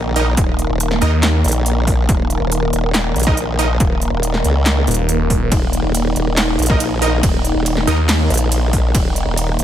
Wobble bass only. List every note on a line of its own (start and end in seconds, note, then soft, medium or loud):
0.00 0.36 A#1 loud
0.37 0.68 D#1 loud
0.70 1.00 D#1 loud
1.45 2.07 A#1 loud
2.09 2.39 D#1 loud
2.41 2.71 D#1 medium
2.73 3.14 D#1 loud
3.16 3.79 A#1 loud
3.80 4.11 D#1 loud
4.12 4.43 D#1 medium
4.44 4.86 C#2 loud
5.52 5.82 D#1 loud
5.84 6.14 D#1 loud
6.16 6.57 D#1 loud
6.59 7.21 A#1 loud
7.23 7.54 D#1 loud
7.55 7.86 D#1 loud
8.30 8.93 A#1 loud
8.95 9.25 D#1 loud
9.27 9.57 D#1 medium
9.59 9.64 D#1 loud